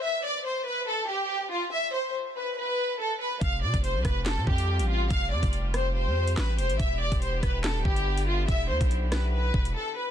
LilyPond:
<<
  \new Staff \with { instrumentName = "Violin section" } { \time 4/4 \key e \phrygian \tempo 4 = 142 e''8 d''8 c''8 b'8 a'8 g'4 f'8 | e''8 c''8 r8 b'8 b'4 a'8 b'8 | f''8 d''8 c''8 b'8 a'8 g'4 f'8 | f''8 d''8 r8 c''8 c''4 b'8 c''8 |
e''8 d''8 c''8 b'8 a'8 g'4 f'8 | e''8 c''8 r8 b'8 b'4 a'8 b'8 | }
  \new Staff \with { instrumentName = "String section" } { \time 4/4 \key e \phrygian << { r1 | r1 | g'1~ | g'1~ |
g'1~ | g'1 | } \\ { r1 | r1 | <c g f'>1~ | <c g f'>1 |
<d b e'>1~ | <d b e'>1 | } >> }
  \new Staff \with { instrumentName = "808-style bass" } { \clef bass \time 4/4 \key e \phrygian r1 | r1 | f,,8 c16 f,,8 c,16 f,,8. c16 f,8. a,,8. | f,,8 f,16 f,,4. f,8. a,,8 e,,16 a,,16 |
e,,8. e,,8. e,,8. d,,16 g,,4. | e,,8 e,16 b,,4.~ b,,16 e,,8 r4 | }
  \new DrumStaff \with { instrumentName = "Drums" } \drummode { \time 4/4 r4 r4 r4 r4 | r4 r4 r4 r4 | <hh bd>8. <hh bd>16 hh8 <hh bd ss>8 <hc hh sn>8 bd16 hh16 r16 hh8. | <hh bd>8. <hh bd>16 hh8 <hh ss>8 r8. hh16 <hc sn>8 hh16 hh16 |
<hh bd>8. <hh bd>16 hh8 <hh bd ss>8 <hc hh sn>8 bd16 hh16 r16 hh8. | <hh bd>8. <hh bd>16 hh8 <hh ss sn>8 r8 bd16 hh16 r4 | }
>>